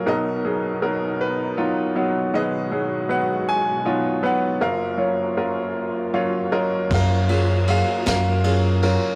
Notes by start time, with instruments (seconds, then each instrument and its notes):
Already playing: upright piano F5
0.05 upright piano B1 B2 F#3 B3 D#4 A#4 D#5, string section B2 B3 D#4
0.10 upright piano A#4
0.45 upright piano F#3 B3 D#4 G#4
0.82 upright piano F#3 B3 D#4 A#4
1.21 upright piano B4
1.57 upright piano F#3 B3 D#4 F4
1.95 upright piano F#3 B3 D#4 F#4
2.33 upright piano G#1 G#2 F#3 B3 D#4 G#4 D#5, string section B2 G#3 F#4
2.37 upright piano B4
2.71 upright piano F#3 B3 D#4 G#4
3.09 upright piano F#3 B3 D#4 B4 F#5
3.49 upright piano G#5
3.85 upright piano F#3 B3 D#4 F4
4.23 upright piano F#3 B3 D#4 B4 F#5
4.60 upright piano F#1 F#2 F#3 C#4 F4 A#4 F5, string section F#3 A#3 F4
4.97 upright piano F#3 C#4 F4 C#5
5.37 upright piano F#3 C#4 F4 A#4
6.14 upright piano F#3 C#4 F4 C#5 F5
6.52 upright piano F#3 C#4 F4 A#4 D#5
6.91 upright piano F#1 F#2 F5, upright bass F#2, kick, ride
6.95 upright piano A#4
7.29 upright piano F#3 C#4 F4 G#4, ride
7.67 upright piano F#3 C#4 F4 G#4 F5, ride
8.06 upright bass F#2, upright piano A#4 F5, snare, ride
8.44 upright piano F#3 C#4 F4 G#4, ride
8.82 upright piano F#3 C#4 F4 A#4, ride